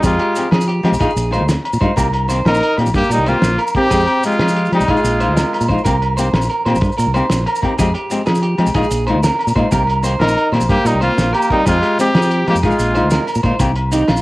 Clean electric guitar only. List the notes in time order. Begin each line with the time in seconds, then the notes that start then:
0.03 G#4
0.20 G4
0.52 G#4
0.68 G4
1.01 G#4
1.33 C5
1.49 muted clean electric guitar stroke
1.81 C5
1.97 A#4
2.29 C5
2.61 A#4
2.77 muted clean electric guitar stroke
3.09 A#4
3.26 C5
3.58 A#4
3.90 G#4
4.07 G4
4.39 G#4
4.56 G4
4.88 G#4
5.20 C5
5.37 A#4
5.68 C5
5.85 A#4
6.17 C5
6.50 A#4
6.65 C5
6.98 A#4
7.14 C5
7.46 A#4
7.78 G#4
7.94 G4
8.26 G#4
8.43 G4
8.75 G#4
9.07 C5
9.24 A#4
9.56 C5
9.72 A#4
10.04 C5
10.37 A#4
10.53 C5
10.85 A#4
11.01 C5
11.33 A#4
11.66 G#4
11.82 G4
12.15 G#4
12.31 G4
12.63 G#4
12.95 C5
13.12 A#4
13.43 C5
13.92 D#4
14.09 F4